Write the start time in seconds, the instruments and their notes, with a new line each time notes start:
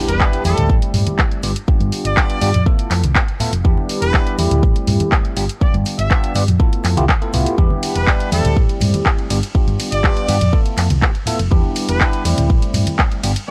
Already playing: tine electric piano G3 B3 D4 E4 G4, impact
0.08 fingered electric bass E1, trumpet section B4, closed hi-hat, maracas
0.20 tine electric piano G3 B3 D4 E4 G4, kick, clap, maracas
0.33 closed hi-hat
0.44 fingered electric bass E2, tine electric piano G3 A3 C4 E4 G4, trumpet section A4, open hi-hat, high conga, maracas
0.57 fingered electric bass D2, closed hi-hat, low conga, maracas
0.69 fingered electric bass A1, kick, maracas
0.82 closed hi-hat
0.94 fingered electric bass G2, open hi-hat, low conga, maracas
1.07 closed hi-hat, high conga, maracas
1.18 kick, clap, maracas
1.31 closed hi-hat
1.43 fingered electric bass G1, tine electric piano G3 B3 D4 F4 G4, open hi-hat, maracas
1.56 closed hi-hat, maracas
1.67 tine electric piano G3 B3 D4 F4 G4, muted fingered electric bass stroke, kick, maracas
1.80 fingered electric bass G2, closed hi-hat, high conga
1.92 open hi-hat, maracas
2.05 fingered electric bass G1, trumpet section D5, closed hi-hat, maracas
2.16 tine electric piano G3 B3 D4 F4 G4, kick, clap, maracas
2.30 closed hi-hat
2.41 fingered electric bass G2, tine electric piano G3 B3 D4 F4 G4, open hi-hat, high conga, maracas
2.54 fingered electric bass F2, closed hi-hat, low conga, maracas
2.66 tine electric piano A3 B3 E4 F4 A4, kick, maracas
2.79 closed hi-hat
2.91 fingered electric bass F2, clap, open hi-hat, maracas
3.03 fingered electric bass C2, closed hi-hat, high conga, maracas
3.15 tine electric piano A3 B3 E4 F4 G4, kick, clap, maracas
3.28 closed hi-hat
3.40 tine electric piano A3 B3 E4 F4 A4, muted fingered electric bass stroke, open hi-hat, low conga, maracas
3.52 fingered electric bass F1, closed hi-hat, maracas
3.64 fingered electric bass E2, tine electric piano G3 B3 D4 E4 G4, kick, maracas
3.77 high conga
3.89 open hi-hat, maracas
4.02 fingered electric bass E1, trumpet section B4, closed hi-hat, maracas
4.14 tine electric piano G3 B3 D4 E4 G4, kick, clap, maracas
4.27 closed hi-hat
4.38 fingered electric bass E2, tine electric piano G3 A3 C4 E4 G4, open hi-hat, high conga, maracas
4.51 fingered electric bass D2, closed hi-hat, low conga, maracas
4.63 fingered electric bass A1, kick, maracas
4.76 closed hi-hat
4.87 fingered electric bass G2, open hi-hat, low conga, maracas
5.00 closed hi-hat, high conga, maracas
5.12 kick, clap, maracas
5.25 closed hi-hat
5.36 fingered electric bass G1, tine electric piano G3 B3 D4 F4 G4, open hi-hat, maracas
5.49 closed hi-hat, maracas
5.61 tine electric piano G3 B3 D4 F4 G4, trumpet section D5, muted fingered electric bass stroke, kick, maracas
5.74 fingered electric bass G2, closed hi-hat, high conga
5.85 open hi-hat, maracas
5.98 fingered electric bass G1, trumpet section E5, closed hi-hat, maracas
6.10 tine electric piano G3 B3 D4 F4 G4, kick, clap, maracas
6.24 closed hi-hat
6.35 fingered electric bass G2, tine electric piano G3 B3 D4 F4 G4, open hi-hat, high conga, maracas
6.48 fingered electric bass F2, closed hi-hat, low conga, maracas
6.60 tine electric piano A3 B3 E4 F4 A4, kick, maracas
6.73 closed hi-hat
6.84 fingered electric bass F2, clap, open hi-hat, maracas
6.97 fingered electric bass C2, tine electric piano A3 B3 E4 F4 G4, closed hi-hat, high conga, maracas
7.08 kick, clap, maracas
7.21 tine electric piano A3 B3 E4 F4 A4, closed hi-hat
7.33 fingered electric bass C2, tine electric piano A3 B3 E4 F4 G4, open hi-hat, low conga, maracas
7.46 closed hi-hat, maracas
7.58 fingered electric bass E2, tine electric piano G3 B3 D4 E4 G4, kick, maracas
7.70 high conga
7.83 open hi-hat, ride, maracas
7.95 fingered electric bass E1, trumpet section B4, closed hi-hat, maracas
8.07 tine electric piano G3 B3 D4 E4 G4, kick, clap, maracas
8.20 closed hi-hat
8.31 fingered electric bass E2, tine electric piano G3 A3 C4 E4 G4, trumpet section A4, open hi-hat, ride, high conga, maracas
8.44 fingered electric bass D2, closed hi-hat, low conga, maracas
8.56 fingered electric bass A1, kick, maracas
8.69 closed hi-hat
8.81 fingered electric bass G2, open hi-hat, ride, low conga, maracas
8.94 closed hi-hat, high conga, maracas
9.06 kick, clap, maracas
9.18 closed hi-hat
9.30 fingered electric bass G1, tine electric piano G3 B3 D4 F4 G4, open hi-hat, ride, maracas
9.43 closed hi-hat, maracas
9.55 tine electric piano G3 B3 D4 F4 G4, muted fingered electric bass stroke, kick, maracas
9.67 fingered electric bass G2, closed hi-hat, high conga
9.79 open hi-hat, ride, maracas
9.92 fingered electric bass G1, trumpet section D5, closed hi-hat, maracas
10.04 tine electric piano G3 B3 D4 F4 G4, kick, clap, maracas
10.17 closed hi-hat
10.28 fingered electric bass G2, tine electric piano G3 B3 D4 F4 G4, open hi-hat, ride, high conga, maracas
10.41 fingered electric bass F2, closed hi-hat, low conga, maracas
10.53 tine electric piano A3 B3 E4 F4 A4, kick, maracas
10.66 closed hi-hat
10.77 fingered electric bass F2, clap, open hi-hat, ride, maracas
10.90 fingered electric bass C2, closed hi-hat, high conga, maracas
11.02 tine electric piano A3 B3 E4 F4 G4, kick, clap, maracas
11.15 closed hi-hat
11.26 tine electric piano A3 B3 E4 F4 A4, muted fingered electric bass stroke, open hi-hat, ride, low conga, maracas
11.39 fingered electric bass F1, closed hi-hat, maracas
11.51 fingered electric bass E2, tine electric piano G3 B3 D4 E4 G4, kick, maracas
11.63 high conga
11.76 open hi-hat, ride, maracas
11.88 fingered electric bass E1, trumpet section B4, closed hi-hat, maracas
12.00 tine electric piano G3 B3 D4 E4 G4, kick, clap, maracas
12.13 closed hi-hat
12.24 fingered electric bass E2, tine electric piano G3 A3 C4 E4 G4, open hi-hat, ride, high conga, maracas
12.38 fingered electric bass D2, closed hi-hat, low conga, maracas
12.50 fingered electric bass A1, kick, maracas
12.62 closed hi-hat
12.74 fingered electric bass G2, open hi-hat, ride, low conga, maracas
12.87 closed hi-hat, high conga, maracas
12.99 kick, clap, maracas
13.12 closed hi-hat
13.23 fingered electric bass G1, tine electric piano G3 B3 D4 F4 G4, open hi-hat, ride, maracas
13.36 closed hi-hat, maracas